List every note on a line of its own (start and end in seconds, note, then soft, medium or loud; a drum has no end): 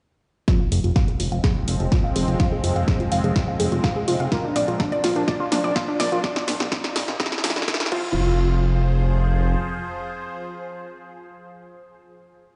0.48 0.60 F3 medium
0.48 6.20 F3 medium
0.48 4.28 G#3 medium
0.48 0.60 C4 medium
0.48 4.28 C4 medium
0.48 0.60 F4 medium
0.48 0.53 F4 medium
0.48 kick loud
0.48 snare soft
0.48 closed hi-hat soft
0.48 riser medium
0.60 0.71 F5 medium
0.72 0.80 F1 medium
0.72 0.80 G#4 medium
0.72 open hi-hat medium
0.84 0.92 F1 medium
0.84 0.89 F4 medium
0.84 closed hi-hat soft
0.96 1.07 F5 medium
0.96 kick loud
0.96 snare soft
0.96 closed hi-hat soft
1.08 1.16 G#4 medium
1.08 closed hi-hat soft
1.20 1.28 F1 medium
1.20 1.25 F4 medium
1.20 open hi-hat loud
1.32 1.40 F1 medium
1.32 1.43 F5 medium
1.32 closed hi-hat soft
1.44 1.52 G#4 medium
1.44 kick loud
1.44 snare soft
1.44 closed hi-hat soft
1.56 1.61 F4 medium
1.68 1.76 F1 loud
1.68 1.80 F5 medium
1.68 open hi-hat loud
1.80 1.88 F1 medium
1.80 1.88 G#4 medium
1.80 closed hi-hat soft
1.92 1.97 F4 medium
1.92 kick loud
1.92 snare medium
1.92 closed hi-hat soft
2.04 2.15 F5 medium
2.16 2.24 F1 medium
2.16 2.24 G#4 medium
2.16 open hi-hat loud
2.28 2.36 F1 medium
2.28 2.33 F4 medium
2.28 closed hi-hat soft
2.40 2.52 F3 medium
2.40 2.52 C4 medium
2.40 2.52 F4 medium
2.40 2.51 F5 medium
2.40 kick loud
2.40 snare medium
2.40 closed hi-hat soft
2.52 2.60 G#4 medium
2.64 2.72 F1 loud
2.64 2.69 F4 medium
2.64 open hi-hat loud
2.76 2.84 F1 medium
2.76 2.87 F5 medium
2.76 closed hi-hat soft
2.88 2.96 G#4 medium
2.88 kick loud
2.88 snare medium
2.88 closed hi-hat soft
3.00 3.05 F4 medium
3.00 closed hi-hat soft
3.12 3.20 F1 medium
3.12 3.23 F5 medium
3.12 open hi-hat loud
3.24 3.32 F1 medium
3.24 3.32 G#4 medium
3.24 closed hi-hat soft
3.36 3.41 F4 medium
3.36 kick loud
3.36 snare medium
3.36 closed hi-hat soft
3.48 3.59 F5 medium
3.60 3.68 F1 medium
3.60 3.68 G#4 medium
3.60 open hi-hat loud
3.72 3.80 F1 medium
3.72 3.77 F4 medium
3.72 closed hi-hat soft
3.84 3.95 F5 medium
3.84 kick loud
3.84 snare medium
3.84 closed hi-hat soft
3.96 4.04 G#4 medium
4.08 4.16 F1 medium
4.08 4.13 F4 medium
4.08 open hi-hat loud
4.20 4.28 F1 medium
4.20 4.31 F5 medium
4.20 closed hi-hat soft
4.32 4.44 A#3 medium
4.32 6.22 A#3 medium
4.32 6.22 D4 medium
4.32 4.40 F4 medium
4.32 4.44 F4 medium
4.32 4.44 A#4 medium
4.32 kick loud
4.32 snare medium
4.32 closed hi-hat soft
4.44 4.49 D4 medium
4.56 4.64 A#1 medium
4.56 4.67 D5 medium
4.56 snare medium
4.56 open hi-hat loud
4.68 4.76 A#1 medium
4.68 4.76 F4 medium
4.68 closed hi-hat soft
4.80 4.85 D4 medium
4.80 kick loud
4.80 snare medium
4.80 closed hi-hat soft
4.92 5.03 D5 medium
4.92 closed hi-hat soft
5.04 5.12 A#1 medium
5.04 5.12 F4 medium
5.04 snare medium
5.04 open hi-hat loud
5.16 5.24 A#1 medium
5.16 5.21 D4 medium
5.16 closed hi-hat soft
5.28 5.39 D5 medium
5.28 kick loud
5.28 snare medium
5.28 closed hi-hat soft
5.40 5.48 F4 medium
5.52 5.60 A#1 loud
5.52 5.57 D4 medium
5.52 snare medium
5.52 open hi-hat loud
5.64 5.72 A#1 medium
5.64 5.75 D5 medium
5.64 closed hi-hat soft
5.76 5.84 F4 medium
5.76 kick loud
5.76 snare medium
5.76 closed hi-hat soft
5.88 5.93 D4 medium
6.00 6.08 A#1 medium
6.00 6.11 D5 medium
6.00 snare medium
6.00 open hi-hat loud
6.12 6.20 A#1 medium
6.12 6.20 F4 medium
6.12 closed hi-hat soft
6.24 kick loud
6.24 snare medium
6.24 closed hi-hat soft
6.36 snare medium
6.48 6.56 A#1 loud
6.48 snare medium
6.48 open hi-hat loud
6.60 6.68 A#1 medium
6.60 snare medium
6.72 kick loud
6.72 snare loud
6.72 closed hi-hat soft
6.84 snare medium
6.84 closed hi-hat soft
6.96 7.04 A#1 medium
6.96 snare loud
6.96 open hi-hat loud
7.08 7.16 A#1 medium
7.08 snare medium
7.08 closed hi-hat soft
7.20 kick loud
7.20 snare loud
7.20 closed hi-hat soft
7.26 snare medium
7.32 snare medium
7.38 snare medium
7.44 7.52 A#1 loud
7.44 snare loud
7.44 open hi-hat loud
7.50 snare medium
7.56 7.64 A#1 medium
7.56 snare medium
7.56 closed hi-hat soft
7.62 snare medium
7.68 kick loud
7.68 snare loud
7.68 closed hi-hat soft
7.74 snare loud
7.80 snare loud
7.86 snare medium
7.92 9.56 F1 medium
7.92 11.28 F3 medium
7.92 11.28 C4 medium
7.92 11.28 F4 medium
7.92 8.36 F4 medium
7.92 11.28 G#4 medium
7.92 11.28 C5 medium
7.92 kick loud
7.92 crash medium